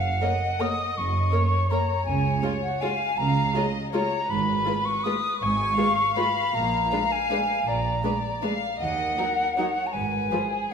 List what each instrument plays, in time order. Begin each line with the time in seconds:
Already playing: double bass section F#1, cello section F#2, violin section F5, flute F#5
0.21 viola section A#3 A#4, violin section C#5 D#5
0.60 viola section A#3 A#4, violin section C#5, flute D#6
0.96 double bass section F#1, cello section F#2, flute C#6
1.31 viola section A#3 A#4, violin section C#5
1.70 viola section A#3 A#4, violin section C#5, flute A#5
2.05 double bass section C#2, cello section C#3, flute G#5
2.43 viola section G#3 F4, violin section C#5
2.63 flute F#5
2.81 viola section G#3 F4, violin section C#5 F5, flute G#5
3.17 double bass section C#2, cello section C#3, violin section F5, flute A#5
3.53 viola section G#3 F4, violin section C#5 D#5
3.92 viola section G#3 F4, violin section C#5, flute A#5
4.29 double bass section G#1, cello section G#2, violin section B4, flute B5
4.66 viola section G#3 F4, violin section B4
4.85 flute C#6
5.04 viola section G#3 F4, violin section B4, flute D#6
5.41 double bass section G#1, cello section G#2, violin section G#5, flute C#6
5.78 viola section G#3 F4, violin section B4 F5
6.16 viola section G#3 F4, violin section B4, flute B5
6.54 double bass section A#1, cello section A#2, flute A#5
6.91 viola section G#3 D4, violin section B4 F5
7.12 flute G#5
7.30 viola section G#3 D4, violin section B4
7.67 double bass section A#1, cello section A#2, violin section D5, flute A#5
8.04 viola section G#3 D4, violin section B4 D5
8.42 viola section G#3 D4, violin section B4 F5
8.79 double bass section D#2, cello section D#2, violin section D#5, flute F#5
9.18 viola section F#3 D#4, violin section A#4
9.57 viola section F#3 D#4, violin section A#4 C#5
9.87 flute A#5
9.93 double bass section G#1, cello section G#2, violin section B4, flute G#5
10.31 viola section F3 F4, violin section G#4 B4